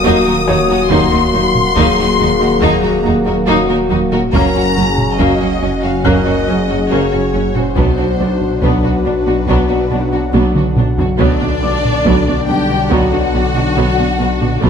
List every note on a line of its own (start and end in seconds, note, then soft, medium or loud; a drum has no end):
0.00 0.90 D#1 medium
0.00 0.87 F#3 medium
0.00 0.88 F#3 medium
0.00 0.24 F#3 medium
0.00 0.87 A#3 medium
0.00 0.91 A#3 medium
0.00 0.25 D#4 medium
0.00 0.87 F#4 medium
0.00 1.73 F#4 medium
0.00 2.16 G#4 soft
0.00 0.44 D#5 medium
0.00 0.87 F#5 medium
0.00 2.16 G#5 medium
0.00 0.88 D#6 loud
0.04 0.12 D#2 medium
0.04 0.14 D#2 medium
0.04 0.25 A#3 medium
0.04 0.25 D#4 medium
0.26 0.34 D#2 medium
0.26 0.34 F#3 medium
0.26 0.34 D#4 medium
0.26 0.34 F#4 medium
0.26 0.34 A#4 medium
0.47 0.56 D#2 medium
0.47 0.57 D#2 medium
0.47 0.55 F#3 medium
0.47 0.55 D#4 medium
0.47 0.56 D#4 medium
0.47 0.56 F#4 medium
0.47 3.01 C#5 medium
0.68 0.78 D#2 medium
0.68 0.76 F#3 medium
0.68 0.76 D#4 medium
0.68 0.78 F#4 medium
0.68 0.78 A#4 medium
0.89 4.36 D#1 medium
0.89 0.99 D#2 medium
0.89 1.10 F#3 medium
0.89 4.30 F#3 medium
0.89 4.16 F#3 medium
0.89 1.11 A#3 medium
0.89 4.30 A#3 medium
0.89 4.16 A#3 medium
0.89 1.10 D#4 medium
0.89 1.11 D#4 medium
0.89 4.30 F#4 medium
0.89 4.30 F#5 medium
0.89 2.59 C6 loud
0.89 taiko medium
1.11 1.21 D#2 medium
1.11 1.20 F#3 medium
1.11 1.19 D#4 medium
1.11 1.19 F#4 soft
1.11 1.19 A#4 medium
1.33 1.42 D#2 medium
1.33 1.43 D#2 medium
1.33 1.41 F#3 medium
1.33 1.41 D#4 soft
1.33 1.42 F#4 soft
1.55 taiko low-mid soft
1.76 1.85 D#2 medium
1.76 1.96 F#3 medium
1.76 1.97 A#3 medium
1.76 1.96 D#4 medium
1.76 1.97 D#4 medium
1.76 3.48 G#4 medium
1.76 taiko medium
1.98 2.07 D#2 medium
1.98 2.06 F#3 medium
1.98 2.06 D#4 medium
1.98 2.06 F#4 medium
1.98 2.06 A#4 medium
2.18 2.28 D#2 medium
2.18 2.26 F#3 medium
2.18 2.26 D#4 soft
2.18 2.28 D#4 medium
2.18 2.28 F#4 medium
2.40 2.50 D#2 medium
2.40 2.48 F#3 medium
2.40 2.48 D#4 medium
2.40 2.50 F#4 soft
2.40 2.49 A#4 medium
2.61 2.70 D#2 medium
2.61 2.71 D#2 medium
2.61 2.81 F#3 medium
2.61 2.82 A#3 medium
2.61 2.81 D#4 medium
2.61 2.82 D#4 medium
2.61 3.06 A#5 medium
2.61 taiko medium
2.82 2.93 D#2 medium
2.82 2.90 F#3 medium
2.82 2.90 D#4 medium
2.82 2.92 F#4 medium
2.82 2.92 A#4 medium
3.04 3.14 D#2 medium
3.04 3.12 F#3 medium
3.04 3.12 D#4 medium
3.04 3.13 D#4 medium
3.04 3.14 F#4 medium
3.26 3.36 D#2 medium
3.26 3.34 F#3 medium
3.26 3.34 D#4 medium
3.26 3.34 F#4 medium
3.26 3.34 A#4 medium
3.47 3.56 D#2 medium
3.47 3.58 D#2 medium
3.47 3.67 F#3 medium
3.47 3.68 A#3 medium
3.47 3.68 D#4 medium
3.47 4.31 F#4 medium
3.69 3.79 D#2 medium
3.69 3.77 F#3 medium
3.69 3.77 D#4 medium
3.69 3.77 F#4 medium
3.69 3.77 A#4 medium
3.90 3.99 D#2 medium
3.90 4.00 D#2 medium
3.90 3.98 F#3 medium
3.90 3.98 D#4 medium
3.90 3.98 F#4 medium
4.12 4.21 D#2 medium
4.12 4.20 F#3 medium
4.12 4.20 D#4 medium
4.12 4.20 F#4 medium
4.12 4.20 A#4 medium
4.12 taiko low-mid soft
4.33 4.42 F#1 medium
4.33 7.79 F#1 medium
4.33 4.43 F#2 medium
4.33 7.72 F#3 medium
4.33 4.54 F#3 medium
4.33 7.73 F#3 medium
4.33 4.53 A#3 medium
4.33 7.76 C#4 medium
4.33 4.54 C#4 medium
4.33 7.77 C#4 medium
4.33 7.72 F#4 medium
4.33 4.76 A#4 medium
4.33 7.73 F#5 medium
4.33 5.15 A#5 loud
4.33 taiko medium
4.55 4.64 F#2 medium
4.55 4.63 F#3 medium
4.55 4.63 C#4 soft
4.55 4.64 F#4 medium
4.76 4.86 F#1 medium
4.76 4.85 F#2 medium
4.76 4.84 F#3 soft
4.76 4.84 C#4 medium
4.76 4.86 C#4 soft
4.76 5.20 G#4 medium
4.98 taiko low-mid soft
5.18 5.28 F#1 medium
5.18 5.28 F#2 medium
5.18 5.39 F#3 medium
5.18 5.40 A#3 medium
5.18 5.39 C#4 medium
5.18 6.05 F#4 medium
5.18 5.84 D#5 medium
5.18 taiko medium
5.40 5.50 F#2 medium
5.40 5.48 F#3 soft
5.40 5.48 C#4 soft
5.40 5.50 F#4 medium
5.61 5.71 F#1 medium
5.61 5.71 F#2 medium
5.61 5.69 F#3 soft
5.61 5.69 C#4 soft
5.61 5.70 C#4 medium
5.84 5.93 F#2 medium
5.84 5.92 F#3 medium
5.84 5.92 C#4 soft
5.84 5.92 F#4 medium
5.84 6.06 F5 medium
6.04 6.13 F#1 medium
6.04 6.13 F#2 medium
6.04 6.25 F#3 medium
6.04 6.25 A#3 medium
6.04 6.25 C#4 medium
6.04 6.48 A#4 medium
6.04 6.89 D#5 medium
6.04 8.58 F#6 medium
6.04 taiko medium
6.26 6.35 F#2 soft
6.26 6.34 F#3 medium
6.26 6.34 C#4 medium
6.26 6.34 F#4 medium
6.47 6.56 F#1 medium
6.47 6.57 F#2 medium
6.47 6.56 F#3 soft
6.47 6.55 C#4 medium
6.47 7.61 G#4 medium
6.69 6.79 F#2 soft
6.69 6.77 F#3 medium
6.69 6.77 C#4 soft
6.69 6.77 F#4 medium
6.91 6.99 F#1 medium
6.91 7.00 F#2 medium
6.91 7.11 F#3 medium
6.91 7.11 A#3 medium
6.91 7.11 C#4 medium
6.91 7.55 C#5 medium
7.12 7.21 F#2 soft
7.12 7.21 F#3 medium
7.12 7.21 C#4 medium
7.12 7.20 F#4 medium
7.33 7.42 F#1 soft
7.33 7.43 F#2 soft
7.33 7.42 F#3 medium
7.33 7.41 C#4 soft
7.33 7.42 C#4 medium
7.55 7.63 F#2 soft
7.55 7.64 F#3 medium
7.55 7.64 C#4 medium
7.55 7.63 F#4 medium
7.55 7.77 C5 medium
7.55 taiko low-mid soft
7.76 7.85 B1 medium
7.76 11.19 B1 medium
7.76 7.85 B2 medium
7.76 10.84 F#3 medium
7.76 7.97 F#3 medium
7.76 11.17 F#3 medium
7.76 7.97 B3 medium
7.76 10.83 D4 medium
7.76 7.97 D4 medium
7.76 11.20 D4 medium
7.76 10.73 F#4 medium
7.76 11.17 F#4 medium
7.76 8.61 C5 medium
7.76 11.17 F#5 medium
7.76 taiko medium
7.98 8.07 B2 soft
7.98 8.06 F#3 soft
7.98 8.06 D4 soft
7.98 8.06 F#4 soft
8.20 8.28 B1 soft
8.20 8.28 B2 soft
8.20 8.28 F#3 soft
8.20 8.28 D4 soft
8.41 taiko low-mid soft
8.62 8.71 B1 medium
8.62 8.71 B2 medium
8.62 8.83 F#3 medium
8.62 8.83 B3 medium
8.62 8.83 D4 medium
8.62 10.77 B4 medium
8.62 taiko medium
8.84 8.92 B2 soft
8.84 8.92 F#3 soft
8.84 8.92 D4 soft
8.84 8.93 F#4 medium
9.05 9.13 B1 soft
9.05 9.14 B2 soft
9.05 9.14 F#3 soft
9.05 9.13 D4 medium
9.05 9.14 D4 soft
9.27 9.35 B2 soft
9.27 9.35 F#3 soft
9.27 9.35 D4 medium
9.27 9.35 F#4 soft
9.48 9.56 B1 medium
9.48 9.56 B2 medium
9.48 9.68 F#3 medium
9.48 9.68 B3 medium
9.48 9.68 D4 medium
9.48 taiko medium
9.69 9.78 B2 soft
9.69 9.78 F#3 soft
9.69 9.78 D4 soft
9.69 9.77 F#4 soft
9.91 9.99 B1 soft
9.91 9.99 B2 soft
9.91 10.00 F#3 soft
9.91 9.99 D4 soft
9.91 10.00 D4 soft
10.13 10.21 B2 soft
10.13 10.21 F#3 soft
10.13 10.21 D4 soft
10.13 10.21 F#4 medium
10.34 10.42 B1 medium
10.34 10.42 B2 medium
10.34 10.54 F#3 medium
10.34 10.54 B3 medium
10.34 10.54 D4 medium
10.34 taiko high medium
10.55 10.63 B2 soft
10.55 10.63 F#3 soft
10.55 10.63 D4 soft
10.55 10.64 F#4 soft
10.55 taiko mid medium
10.76 10.85 B1 soft
10.76 10.85 B2 soft
10.76 10.85 F#3 medium
10.76 10.85 D4 soft
10.76 10.86 D4 soft
10.76 taiko low-mid medium
10.98 11.06 B2 soft
10.98 11.06 F#3 soft
10.98 11.06 D4 medium
10.98 11.08 F#4 soft
10.98 taiko low medium
11.19 11.28 B1 medium
11.19 14.59 B1 medium
11.19 11.28 B2 medium
11.19 12.44 D3 medium
11.19 14.59 D3 medium
11.19 14.60 D3 medium
11.19 11.39 F#3 medium
11.19 11.39 B3 medium
11.19 14.58 D4 medium
11.19 12.45 D4 medium
11.19 14.59 D4 medium
11.19 12.44 D5 loud
11.19 14.59 D5 medium
11.19 taiko medium
11.42 11.50 B2 medium
11.42 11.50 D4 medium
11.42 11.50 F#4 soft
11.62 11.71 B1 medium
11.62 11.71 B2 medium
11.62 11.71 B3 soft
11.62 11.71 D4 soft
11.62 14.16 D6 medium
11.84 taiko low-mid soft
12.05 12.14 B1 medium
12.05 12.14 B2 medium
12.05 12.25 F#3 medium
12.05 12.25 B3 medium
12.05 taiko medium
12.26 12.36 B2 medium
12.26 12.34 D4 soft
12.26 12.35 F#4 soft
12.47 12.56 B1 medium
12.47 12.57 B2 soft
12.47 12.91 G3 medium
12.47 12.55 B3 soft
12.47 12.55 D4 soft
12.47 12.91 G4 medium
12.47 12.91 G5 medium
12.70 12.78 B2 soft
12.70 12.78 D4 medium
12.70 12.78 F#4 soft
12.90 13.00 B1 medium
12.90 13.00 B2 medium
12.90 14.62 F#3 medium
12.90 13.11 F#3 medium
12.90 13.11 B3 medium
12.90 14.63 F#4 medium
12.90 14.63 F#5 medium
12.90 taiko medium
13.12 13.21 B2 medium
13.12 13.20 D4 medium
13.12 13.20 F#4 medium
13.34 13.43 B1 medium
13.34 13.43 B2 medium
13.34 13.42 B3 medium
13.34 13.42 D4 medium
13.55 13.63 B2 medium
13.55 13.64 D4 medium
13.55 13.64 F#4 medium
13.77 13.85 B1 medium
13.77 13.85 B2 medium
13.77 13.97 F#3 medium
13.77 13.97 B3 medium
13.98 14.08 B2 soft
13.98 14.06 D4 medium
13.98 14.06 F#4 medium
14.20 14.28 B1 soft
14.20 14.29 B2 soft
14.20 14.28 B3 medium
14.20 14.28 D4 medium
14.41 14.49 B2 medium
14.41 14.49 D4 medium
14.41 14.49 F#4 medium
14.41 taiko low-mid soft
14.61 14.70 B1 medium
14.61 14.70 B2 medium
14.61 14.70 D3 medium
14.61 14.70 F#3 medium
14.61 14.70 B3 medium
14.61 14.70 D4 medium
14.61 14.70 F#4 medium
14.61 14.70 D5 medium
14.61 14.70 F#5 medium
14.61 taiko medium
14.65 14.70 F#3 medium